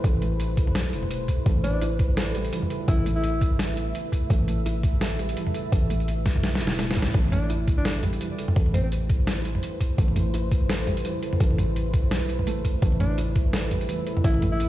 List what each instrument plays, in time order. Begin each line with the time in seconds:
Already playing: felt piano E3 G3 A3 E4 A4, ambient pad A3 E4 B4 C5
0.04 808-style bass A1, felt piano A4, kick, closed hi-hat
0.22 felt piano A3, closed hi-hat
0.40 closed hi-hat
0.57 kick, closed hi-hat
0.67 mid tom
0.75 808-style bass B1, snare, closed hi-hat
0.93 808-style bass E1, open hi-hat
1.03 mid tom
1.11 closed hi-hat
1.28 kick, closed hi-hat
1.46 808-style bass A1, felt piano A3, ambient pad E5, kick, closed hi-hat
1.64 felt piano A3, alto saxophone D4, closed hi-hat
1.82 felt piano E4, closed hi-hat
1.99 kick, closed hi-hat
2.17 felt piano A4, snare, closed hi-hat
2.35 felt piano G3, open hi-hat
2.45 open hi-hat
2.53 felt piano E3, closed hi-hat
2.62 mid tom
2.70 closed hi-hat
2.88 808-style bass A1, alto saxophone E4, felt piano A4, kick, closed hi-hat
3.06 felt piano A3, closed hi-hat
3.16 alto saxophone E4
3.24 closed hi-hat
3.41 kick, closed hi-hat
3.59 snare, closed hi-hat
3.77 open hi-hat
3.95 closed hi-hat
4.12 kick, closed hi-hat
4.30 808-style bass A1, felt piano A3, kick, closed hi-hat
4.48 felt piano A3, closed hi-hat
4.66 felt piano E4, closed hi-hat
4.83 kick, closed hi-hat
5.01 felt piano A4, snare, closed hi-hat
5.19 felt piano G3, open hi-hat
5.29 open hi-hat
5.37 felt piano E3, closed hi-hat
5.47 mid tom
5.54 closed hi-hat
5.72 808-style bass A1, felt piano A4, kick, closed hi-hat
5.90 felt piano A3, closed hi-hat
6.00 open hi-hat
6.08 closed hi-hat
6.26 kick, snare, closed hi-hat
6.36 mid tom
6.44 808-style bass B1, snare, closed hi-hat
6.55 snare
6.61 808-style bass E1, felt piano E4, open hi-hat
6.67 snare
6.79 felt piano A3, snare, closed hi-hat
6.91 snare
6.97 808-style bass A1, felt piano A2, kick, open hi-hat
7.02 snare
7.14 808-style bass A1, ambient pad A3 E4 B4 C5, felt piano A3, kick, closed hi-hat
7.24 mid tom
7.32 felt piano A3, alto saxophone D4, closed hi-hat, mid tom
7.50 felt piano E4, closed hi-hat
7.68 kick, closed hi-hat
7.78 alto saxophone D4
7.85 felt piano A4, snare, closed hi-hat
8.03 felt piano G3, mid tom, open hi-hat
8.13 open hi-hat
8.21 felt piano E3, closed hi-hat
8.39 closed hi-hat
8.48 mid tom
8.56 808-style bass A1, felt piano A4, kick, closed hi-hat
8.66 mid tom
8.74 felt piano A3, alto saxophone C4, closed hi-hat, mid tom
8.84 alto saxophone C4
8.92 closed hi-hat
9.10 kick, closed hi-hat
9.27 snare, closed hi-hat
9.45 open hi-hat
9.55 mid tom
9.63 closed hi-hat
9.81 kick, closed hi-hat
9.98 808-style bass A1, felt piano A3, kick, closed hi-hat
10.08 mid tom
10.16 felt piano A3, closed hi-hat, mid tom
10.34 felt piano E4, closed hi-hat
10.52 kick, closed hi-hat
10.69 felt piano A4, snare, closed hi-hat
10.87 felt piano G3, mid tom, open hi-hat
10.97 open hi-hat
11.05 felt piano E3, closed hi-hat
11.23 closed hi-hat
11.33 mid tom
11.40 808-style bass A1, felt piano A4, kick, closed hi-hat
11.51 mid tom
11.58 felt piano A3, closed hi-hat, mid tom
11.76 closed hi-hat
11.94 kick, closed hi-hat
12.11 808-style bass B1, snare, closed hi-hat
12.29 open hi-hat
12.39 mid tom
12.47 808-style bass A1, felt piano A3, closed hi-hat
12.65 kick, closed hi-hat
12.82 808-style bass A1, felt piano A3, ambient pad E5, kick, closed hi-hat
12.92 mid tom
13.00 felt piano A3, alto saxophone D4, closed hi-hat, mid tom
13.18 felt piano E4, closed hi-hat
13.36 kick, closed hi-hat
13.53 felt piano A4, snare, closed hi-hat
13.71 felt piano G3, mid tom, open hi-hat
13.81 open hi-hat
13.89 felt piano E3, closed hi-hat
14.07 closed hi-hat
14.17 mid tom
14.24 808-style bass A1, alto saxophone E4, felt piano A4, kick, closed hi-hat
14.34 mid tom
14.42 felt piano A3, closed hi-hat, mid tom
14.52 alto saxophone E4
14.60 closed hi-hat